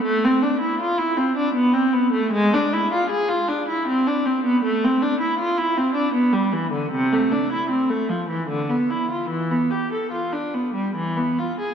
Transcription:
\new Staff \with { instrumentName = "Viola" } { \time 3/4 \key a \minor \tempo 4 = 77 a16 c'16 d'16 e'16 f'16 e'16 c'16 d'16 b16 c'16 b16 a16 | gis16 d'16 e'16 f'16 gis'16 f'16 d'16 e'16 c'16 d'16 c'16 b16 | a16 c'16 d'16 e'16 f'16 e'16 c'16 d'16 b16 g16 e16 d16 | c16 a16 d'16 e'16 c'16 a16 f16 e16 d16 b16 e'16 f'16 |
e16 b16 g'16 a'16 f'16 d'16 b16 g16 e16 b16 f'16 gis'16 | }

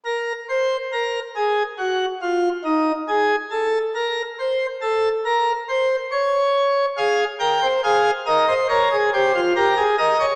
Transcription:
\new Staff \with { instrumentName = "Pipe organ" } { \time 4/4 \key bes \minor \tempo 4 = 70 << { bes'8 c''8 bes'8 aes'8 ges'8 f'8 ees'8 aes'8 | a'8 bes'8 c''8 a'8 bes'8 c''8 des''4 | f''8 g''8 f''8 ees''8 des''8 c''8 bes'8 ees''8 | } \\ { r1 | r1 | aes'8 bes'16 c''16 aes'8 bes'16 c''16 bes'16 aes'16 g'16 f'16 g'16 aes'16 bes'16 des''16 | } >> }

